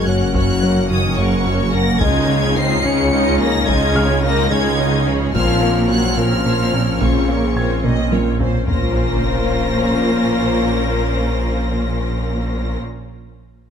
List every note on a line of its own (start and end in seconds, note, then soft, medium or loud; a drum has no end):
0.00 0.25 F#1 medium
0.00 2.03 F#1 medium
0.00 0.25 F#2 medium
0.00 2.01 A#3 medium
0.00 2.01 C#4 medium
0.00 2.01 F#4 medium
0.00 2.01 A#4 medium
0.07 0.24 F#2 medium
0.07 0.33 F#3 medium
0.07 0.24 A#3 medium
0.07 0.35 A#3 medium
0.07 0.34 C#4 medium
0.07 0.35 A#4 medium
0.07 0.35 F#5 medium
0.07 0.34 F#6 medium
0.34 1.09 F#1 medium
0.34 0.51 F#2 medium
0.34 1.08 F#2 medium
0.34 0.89 F#3 medium
0.34 0.51 F#3 medium
0.34 0.62 C#4 medium
0.34 0.63 F#4 medium
0.34 0.63 C#5 medium
0.34 0.89 F#6 loud
0.34 taiko loud
0.63 0.79 F#3 medium
0.63 0.91 A#3 medium
0.63 0.79 C#4 medium
0.63 0.89 C#4 medium
0.63 0.91 A#4 medium
0.63 0.91 F#5 medium
0.90 1.07 F#2 medium
0.90 1.18 D#3 medium
0.90 1.16 C#4 medium
0.90 1.07 F#4 medium
0.90 1.16 F#4 medium
0.90 1.17 C#5 medium
0.90 1.18 D#6 loud
1.18 1.92 F#1 loud
1.18 1.91 F#2 medium
1.18 1.35 F#2 loud
1.18 1.74 C#3 medium
1.18 1.34 F#3 medium
1.18 1.46 A#3 medium
1.18 1.44 C#4 medium
1.18 1.46 A#4 medium
1.18 1.46 F#5 medium
1.18 1.74 C#6 loud
1.45 1.62 F#2 medium
1.45 1.73 C#4 medium
1.45 1.73 F#4 medium
1.45 1.62 F#4 medium
1.45 1.74 C#5 medium
1.73 1.90 F#2 medium
1.73 1.90 A#3 medium
1.73 2.01 A#3 medium
1.73 2.01 A#3 loud
1.73 2.02 C#4 medium
1.73 2.02 A#4 medium
1.73 2.02 F#5 medium
1.73 2.01 A#6 loud
2.00 2.18 C#2 loud
2.00 5.37 C#2 medium
2.00 2.75 C#2 medium
2.00 2.18 C#3 loud
2.00 2.75 C#3 loud
2.00 2.57 G#3 loud
2.00 5.35 G#3 medium
2.00 2.27 D#4 medium
2.00 2.28 D#4 medium
2.00 5.35 D#4 medium
2.00 2.27 F4 medium
2.00 5.34 F4 medium
2.00 5.35 C#5 medium
2.00 2.28 D#5 medium
2.00 2.57 G#6 loud
2.00 taiko loud
2.28 2.45 C#3 medium
2.28 2.46 G#3 medium
2.28 2.57 C#4 medium
2.28 2.55 D#4 medium
2.28 2.57 G#4 medium
2.28 2.57 C#5 medium
2.56 2.73 C#2 medium
2.56 2.85 C4 loud
2.56 2.73 C#4 medium
2.56 2.84 D#4 medium
2.56 2.83 D#4 medium
2.56 2.85 F4 medium
2.56 2.84 D#5 medium
2.56 2.85 C7 loud
2.84 3.01 C#2 loud
2.84 3.59 C#2 loud
2.84 3.01 C#3 medium
2.84 3.58 C#3 medium
2.84 3.39 C#4 loud
2.84 3.13 C#4 medium
2.84 3.12 D#4 medium
2.84 3.13 G#4 medium
2.84 3.13 C#5 medium
2.84 3.41 C#7 loud
3.11 3.28 C#2 medium
3.11 3.29 C#4 medium
3.11 3.38 D#4 medium
3.11 3.39 D#4 medium
3.11 3.39 F4 medium
3.11 3.38 D#5 medium
3.38 3.56 C#2 medium
3.38 3.57 F3 medium
3.38 3.66 A#3 loud
3.38 3.68 C#4 medium
3.38 3.67 D#4 medium
3.38 3.68 G#4 medium
3.38 3.68 C#5 medium
3.38 3.68 A#6 loud
3.67 3.84 C#2 loud
3.67 4.42 C#2 loud
3.67 4.42 C#3 loud
3.67 3.85 C#3 loud
3.67 4.06 G#3 loud
3.67 3.95 D#4 medium
3.67 3.96 F4 medium
3.67 3.95 D#5 medium
3.67 4.24 G#6 loud
3.67 taiko loud
3.95 4.12 C#3 medium
3.95 4.13 G#3 medium
3.95 4.24 C#4 medium
3.95 4.23 D#4 medium
3.95 4.23 G#4 medium
3.95 4.23 C#5 medium
3.95 5.59 F6 medium
4.23 4.40 C#2 medium
4.23 4.51 A#3 loud
4.23 4.41 C#4 medium
4.23 4.50 D#4 medium
4.23 4.49 F4 medium
4.23 4.50 D#5 medium
4.23 4.51 A#6 loud
4.51 4.68 C#2 loud
4.51 5.25 C#2 loud
4.51 4.68 C#3 loud
4.51 5.25 C#3 medium
4.51 5.05 G#3 loud
4.51 4.79 C#4 medium
4.51 4.79 D#4 medium
4.51 4.79 G#4 medium
4.51 4.79 C#5 medium
4.51 5.07 G#6 loud
4.79 4.96 C#2 medium
4.79 4.96 C#4 medium
4.79 5.07 D#4 medium
4.79 5.07 F4 medium
4.79 5.07 D#5 medium
5.07 5.24 C#2 medium
5.07 5.24 F3 medium
5.07 5.35 C#4 medium
5.07 5.35 D#4 medium
5.07 5.35 G#4 medium
5.07 5.33 C#5 medium
5.34 6.08 A#1 loud
5.34 8.67 A#1 medium
5.34 5.51 A#2 medium
5.34 6.09 A#2 loud
5.34 5.87 F3 loud
5.34 8.67 A#3 medium
5.34 5.52 A#3 loud
5.34 8.68 C4 medium
5.34 5.61 C4 medium
5.34 8.67 C#4 medium
5.34 8.64 F4 medium
5.34 5.61 F4 medium
5.34 5.60 C5 medium
5.34 5.61 C#5 medium
5.34 5.86 F6 loud
5.34 taiko loud
5.62 5.79 A#3 medium
5.62 5.90 C4 medium
5.62 5.91 C#4 medium
5.62 5.80 F4 medium
5.62 5.90 A#4 medium
5.62 5.89 C#5 medium
5.89 6.06 A#2 medium
5.89 6.17 F#3 medium
5.89 6.17 C4 medium
5.89 6.18 F4 medium
5.89 6.07 A#4 medium
5.89 6.18 C5 medium
5.89 6.17 C#5 medium
5.89 6.17 F#6 loud
6.17 6.92 A#1 medium
6.17 6.34 A#2 loud
6.17 6.92 A#2 medium
6.17 7.01 F3 loud
6.17 6.35 A#3 loud
6.17 6.45 C4 medium
6.17 6.46 C#4 medium
6.17 6.46 A#4 medium
6.17 6.44 C#5 medium
6.17 7.01 F6 loud
6.45 6.62 A#2 medium
6.45 6.72 C4 medium
6.45 6.72 F4 medium
6.45 6.63 A#4 medium
6.45 6.71 C5 medium
6.45 6.71 C#5 medium
6.73 6.90 A#2 medium
6.73 7.00 C4 medium
6.73 7.01 C#4 medium
6.73 6.91 C#4 medium
6.73 7.01 A#4 medium
6.73 6.99 C#5 medium
7.00 7.75 A#1 medium
7.00 7.17 A#2 medium
7.00 7.75 A#2 medium
7.00 7.85 C#3 medium
7.00 7.18 A#3 loud
7.00 7.28 C4 medium
7.00 7.29 F4 medium
7.00 7.29 C5 medium
7.00 7.28 C#5 medium
7.00 7.85 C#6 medium
7.00 taiko loud
7.28 7.45 A#3 medium
7.28 7.56 C4 medium
7.28 7.57 C#4 medium
7.28 7.45 F4 medium
7.28 7.57 A#4 medium
7.28 7.55 C#5 medium
7.56 7.73 A#2 medium
7.56 7.83 C4 medium
7.56 7.83 F4 medium
7.56 7.73 A#4 medium
7.56 7.83 C5 medium
7.56 7.83 C#5 medium
7.56 8.64 G#6 medium
7.84 8.58 A#1 medium
7.84 8.01 A#2 loud
7.84 8.58 A#2 medium
7.84 8.01 A#3 loud
7.84 8.11 C4 medium
7.84 8.13 C#4 medium
7.84 8.10 D#5 medium
7.84 taiko mid medium
8.12 8.29 A#2 medium
8.12 8.39 C4 medium
8.12 8.41 F4 medium
8.12 8.29 A#4 medium
8.12 8.40 C#5 medium
8.12 taiko high medium
8.39 8.56 A#2 medium
8.39 8.68 C4 medium
8.39 8.67 C#4 medium
8.39 8.57 C#4 medium
8.39 8.67 C5 medium
8.39 taiko low loud
8.67 12.77 A#1 medium
8.67 12.77 A#2 medium
8.67 12.77 A#3 medium
8.67 12.78 A#3 medium
8.67 12.77 C#4 medium
8.67 12.78 C#4 medium
8.67 12.77 F4 medium
8.67 12.78 F4 medium
8.67 12.77 A#4 medium
8.67 12.77 C5 medium
8.67 12.78 C5 medium
8.67 12.78 A#6 loud
8.67 taiko low medium
8.67 sub drop medium